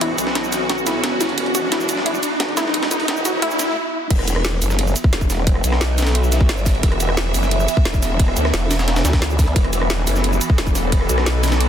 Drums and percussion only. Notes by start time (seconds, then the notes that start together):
0.01 closed hi-hat, ride
0.18 closed hi-hat, ride, cabasa
0.27 snare
0.35 snare, closed hi-hat, ride
0.44 cabasa
0.52 snare, closed hi-hat, ride, cabasa
0.69 snare, closed hi-hat, ride
0.78 cabasa
0.87 snare, closed hi-hat, ride, cabasa
1.04 snare, closed hi-hat, ride
1.21 snare, closed hi-hat, ride, cabasa
1.29 ride
1.38 closed hi-hat, ride
1.46 ride
1.55 closed hi-hat, ride, cabasa
1.72 snare, closed hi-hat, ride
1.80 snare, cabasa
1.89 closed hi-hat, ride, cabasa
1.97 snare
2.06 closed hi-hat, ride
2.14 cabasa
2.23 closed hi-hat, ride, cabasa
2.40 snare, closed hi-hat, ride
2.48 ride
2.57 snare, closed hi-hat, ride, cabasa
2.66 snare
2.74 closed hi-hat, ride
2.83 snare, ride
2.91 snare, closed hi-hat, cabasa
3.00 ride
3.08 snare, closed hi-hat, ride
3.17 cabasa
3.25 snare, closed hi-hat, ride, cabasa
3.42 closed hi-hat, ride
3.51 cabasa
3.59 snare, closed hi-hat, ride, cabasa
4.10 kick, closed hi-hat, crash, ride
4.19 cross-stick, ride
4.28 closed hi-hat, ride, cabasa
4.36 cross-stick
4.45 snare, closed hi-hat, ride
4.53 snare
4.62 open hi-hat, ride, cabasa
4.70 snare, cabasa
4.79 closed hi-hat, ride
4.87 cabasa
4.96 closed hi-hat, ride, cabasa
5.04 kick
5.13 snare, closed hi-hat, ride
5.21 kick, ride, cabasa
5.30 snare, open hi-hat, ride, cabasa
5.47 kick, closed hi-hat, ride
5.55 cross-stick
5.64 closed hi-hat, ride, cabasa
5.72 cross-stick, snare
5.81 snare, closed hi-hat, ride
5.98 snare, open hi-hat, ride, cabasa
6.02 snare, ride
6.06 snare, ride, cabasa
6.15 closed hi-hat, ride
6.23 cabasa
6.32 snare, closed hi-hat, ride, cabasa
6.41 kick
6.49 snare, closed hi-hat, ride
6.58 cabasa
6.66 kick, snare, open hi-hat, ride, cabasa
6.75 ride
6.83 kick, closed hi-hat, ride
6.92 cross-stick, ride
7.00 closed hi-hat, ride, cabasa
7.09 cross-stick
7.17 snare, closed hi-hat, ride
7.26 snare
7.34 open hi-hat, ride, cabasa
7.43 snare, cabasa
7.51 closed hi-hat, ride
7.60 cabasa
7.68 closed hi-hat, ride, cabasa
7.77 kick
7.85 snare, closed hi-hat, ride
7.94 kick, ride, cabasa
8.03 snare, open hi-hat, ride, cabasa
8.20 kick, closed hi-hat, ride
8.28 cross-stick
8.37 closed hi-hat, ride, cabasa
8.45 cross-stick, snare
8.54 snare, closed hi-hat, ride
8.71 snare, open hi-hat, ride, cabasa
8.79 snare, ride, cabasa
8.88 snare, closed hi-hat, ride
8.96 snare, ride, cabasa
9.05 snare, closed hi-hat, ride, cabasa
9.13 kick, snare, ride
9.22 snare, closed hi-hat, ride
9.30 cabasa
9.39 kick, snare, open hi-hat, ride, cabasa
9.47 ride
9.56 kick, closed hi-hat, ride
9.64 cross-stick, ride
9.73 closed hi-hat, ride, cabasa
9.82 cross-stick
9.90 snare, closed hi-hat, ride
9.99 snare
10.07 open hi-hat, ride, cabasa
10.16 snare, cabasa
10.24 closed hi-hat, ride
10.33 cabasa
10.41 closed hi-hat, ride, cabasa
10.50 kick
10.58 snare, closed hi-hat, ride
10.67 kick, ride, cabasa
10.75 snare, open hi-hat, ride, cabasa
10.92 kick, closed hi-hat, ride
11.01 cross-stick
11.09 closed hi-hat, ride, cabasa
11.18 cross-stick, snare
11.26 snare, closed hi-hat, ride
11.43 snare, open hi-hat, ride, cabasa
11.48 snare, ride
11.52 snare, ride, cabasa
11.60 closed hi-hat, ride